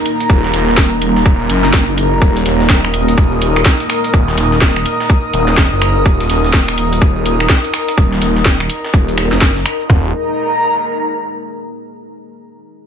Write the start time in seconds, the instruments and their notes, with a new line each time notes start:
Already playing: ambient pad A#3 D#4 A#4, analog synth pad D#4 A#4 A#5
0.06 open hi-hat, cabasa, shaker
0.20 closed hi-hat, cabasa
0.30 detuned saw bass D#1, kick, cabasa, shaker
0.44 snare, cabasa
0.54 detuned saw bass D#1, snare, open hi-hat, cabasa, shaker
0.68 snare, cabasa
0.77 kick, snare, cabasa, shaker
0.92 cabasa
1.02 detuned saw bass D#1, open hi-hat, cabasa, shaker
1.16 snare, cabasa
1.26 kick, cabasa
1.40 cabasa
1.50 detuned saw bass F#1, open hi-hat, cabasa, shaker
1.64 snare, cabasa
1.73 kick, snare, cabasa, shaker
1.88 detuned saw bass F#1, cabasa
1.98 open hi-hat, cabasa, shaker
2.13 cabasa
2.22 detuned saw bass D#1, ambient pad G#4, kick, cabasa, shaker
2.36 closed hi-hat, cabasa
2.46 detuned saw bass D#1, snare, open hi-hat, cabasa, shaker
2.60 snare, cabasa
2.66 analog synth pad D#6, kick, snare, cabasa, shaker
2.85 finger snap, cabasa
2.94 detuned saw bass D#1, open hi-hat, cabasa, shaker
3.08 closed hi-hat, cabasa
3.18 detuned saw bass D#1, kick, cabasa, shaker
3.32 cabasa
3.42 open hi-hat, cabasa, shaker
3.56 finger snap, cabasa
3.65 kick, snare, cabasa, shaker
3.80 closed hi-hat, cabasa
3.90 finger snap, open hi-hat, cabasa, shaker
4.04 closed hi-hat, cabasa
4.14 detuned saw bass D#1, kick, cabasa, shaker
4.28 snare, cabasa
4.38 detuned saw bass D#1, snare, open hi-hat, cabasa, shaker
4.52 snare, cabasa
4.61 kick, snare, cabasa, shaker
4.76 finger snap, cabasa
4.86 open hi-hat, cabasa, shaker
5.00 snare, cabasa
5.10 kick, cabasa, shaker
5.24 cabasa
5.34 detuned saw bass D#1, open hi-hat, cabasa, shaker
5.48 snare, cabasa
5.57 kick, snare, cabasa, shaker
5.72 detuned saw bass F#1, cabasa
5.82 finger snap, open hi-hat, cabasa, shaker
5.96 cabasa
6.06 detuned saw bass D#1, kick, cabasa, shaker
6.20 closed hi-hat, cabasa
6.30 detuned saw bass D#1, snare, open hi-hat, cabasa, shaker
6.44 snare, cabasa
6.53 kick, snare, cabasa, shaker
6.68 finger snap, cabasa
6.78 detuned saw bass D#1, open hi-hat, cabasa, shaker
6.92 closed hi-hat, cabasa
7.02 detuned saw bass D#1, kick, cabasa, shaker
7.16 cabasa
7.26 open hi-hat, cabasa, shaker
7.40 finger snap, cabasa
7.49 kick, snare, cabasa, shaker
7.64 closed hi-hat, cabasa
7.74 finger snap, open hi-hat, cabasa, shaker
7.88 closed hi-hat, cabasa
7.98 detuned saw bass D#1, kick, cabasa, shaker
8.12 snare, cabasa
8.22 detuned saw bass D#1, snare, open hi-hat, cabasa, shaker
8.36 snare, cabasa
8.45 kick, snare, cabasa, shaker
8.60 finger snap, open hi-hat, cabasa
8.70 open hi-hat, cabasa, shaker
8.84 snare, cabasa
8.94 detuned saw bass D#1, kick, cabasa, shaker
9.08 closed hi-hat, cabasa
9.18 finger snap, snare, open hi-hat, cabasa, shaker
9.32 detuned saw bass F#1, snare, cabasa, shaker
9.41 kick, snare, closed hi-hat, cabasa
9.56 snare, cabasa, shaker
9.66 finger snap, open hi-hat, cabasa, shaker
9.80 cabasa
9.90 detuned saw bass D#1, analog synth pad D#4, kick, floor tom
9.98 analog synth pad A#4
10.06 analog synth pad A#5